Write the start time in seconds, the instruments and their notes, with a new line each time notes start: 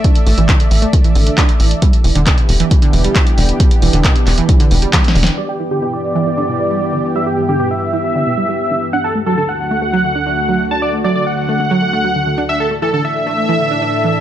Already playing: analog synth pad A3 A4 D5 E5
0.04 synth pluck D4, kick, closed hi-hat
0.15 closed hi-hat
0.27 analog synth bass A1, synth pluck A3, open hi-hat
0.38 analog synth bass A1, synth pluck E3, closed hi-hat
0.49 synth pluck D3, kick, clap, closed hi-hat
0.60 closed hi-hat
0.71 analog synth bass A1, open hi-hat
0.82 synth pluck A3, closed hi-hat
0.93 synth pluck A3, kick, closed hi-hat
1.04 synth pluck E3, closed hi-hat
1.15 analog synth bass A1, synth pluck D3, open hi-hat
1.27 synth pluck D4, closed hi-hat
1.38 synth pluck D4, kick, clap, closed hi-hat
1.49 closed hi-hat
1.60 analog synth bass A1, synth pluck E3, open hi-hat
1.71 closed hi-hat
1.82 analog synth pad E3 B3 D4 G4, synth pluck G3, kick, closed hi-hat
1.93 closed hi-hat
2.04 analog synth bass E1, synth pluck E3, open hi-hat
2.15 analog synth bass E1, synth pluck D3, closed hi-hat
2.27 synth pluck B2, kick, clap, closed hi-hat
2.38 closed hi-hat
2.49 analog synth bass E1, open hi-hat
2.60 synth pluck E3, closed hi-hat
2.71 synth pluck E3, kick, closed hi-hat
2.82 synth pluck D3, closed hi-hat
2.93 analog synth bass E1, synth pluck B2, open hi-hat
3.04 synth pluck G3, closed hi-hat
3.16 synth pluck G3, kick, clap, closed hi-hat
3.27 closed hi-hat
3.38 analog synth bass E1, synth pluck D3, open hi-hat
3.49 closed hi-hat
3.60 synth pluck G3, kick, closed hi-hat
3.71 closed hi-hat
3.82 analog synth bass E1, synth pluck E3, open hi-hat
3.93 analog synth bass E1, synth pluck D3, closed hi-hat
4.04 synth pluck B2, kick, clap, closed hi-hat
4.16 closed hi-hat
4.27 analog synth bass E1, clap, open hi-hat
4.38 synth pluck E3, closed hi-hat
4.49 synth pluck E3, kick, closed hi-hat
4.60 synth pluck D3, closed hi-hat
4.71 analog synth bass E1, synth pluck B2, open hi-hat
4.82 synth pluck G3, closed hi-hat
4.93 synth pluck G3, kick, snare, clap, closed hi-hat
5.04 snare, closed hi-hat
5.15 analog synth bass E1, synth pluck D3, open hi-hat
5.23 snare, closed hi-hat
5.38 analog synth pad G2 E3 B3 G4, synth pluck G3, supersaw synth D5
5.49 supersaw synth G4
5.60 synth pluck E3
5.71 synth pluck D3, supersaw synth G4
5.82 synth pluck B2, supersaw synth G4
5.93 supersaw synth D5
6.15 synth pluck E3
6.27 synth pluck E3
6.38 synth pluck D3
6.49 synth pluck B2
6.60 synth pluck G3
6.71 synth pluck G3
6.93 synth pluck D3
7.15 synth pluck G3, supersaw synth E5
7.27 supersaw synth G4
7.38 synth pluck E3
7.49 synth pluck D3, supersaw synth G4
7.60 synth pluck B2, supersaw synth G4
7.71 supersaw synth E5
7.93 synth pluck E3
8.04 synth pluck E3
8.15 synth pluck D3
8.27 synth pluck B2
8.38 synth pluck G3
8.49 synth pluck G3
8.71 synth pluck D3
8.93 analog synth pad D2 D3 A3 F#4, synth pluck D4, supersaw synth F#5
9.04 supersaw synth A4
9.15 synth pluck A3
9.26 synth pluck F#3, supersaw synth A4
9.38 synth pluck D3, supersaw synth A4
9.49 supersaw synth F#5
9.71 synth pluck A3
9.82 synth pluck A3
9.93 synth pluck F#3
10.04 synth pluck D3
10.16 synth pluck D4
10.27 synth pluck D4
10.49 synth pluck F#3
10.71 synth pluck D4, supersaw synth A5
10.82 supersaw synth D5
10.93 synth pluck A3
11.04 synth pluck F#3, supersaw synth D5
11.15 synth pluck D3, supersaw synth D5
11.27 supersaw synth F#5
11.49 synth pluck A3
11.60 synth pluck A3
11.71 synth pluck F#3
11.82 synth pluck A3
11.93 synth pluck A3
12.05 synth pluck F#3
12.16 synth pluck D3
12.27 synth pluck D3
12.38 synth pluck D4
12.49 analog synth pad A2 E3 D4 A4, synth pluck D4, supersaw synth E5
12.60 supersaw synth A4
12.71 synth pluck A3
12.82 synth pluck E3, supersaw synth A4
12.93 synth pluck D3, supersaw synth A4
13.05 supersaw synth E5
13.27 synth pluck A3
13.38 synth pluck A3
13.49 synth pluck E3
13.60 synth pluck D3
13.71 synth pluck D4
13.82 synth pluck D4
14.04 synth pluck E3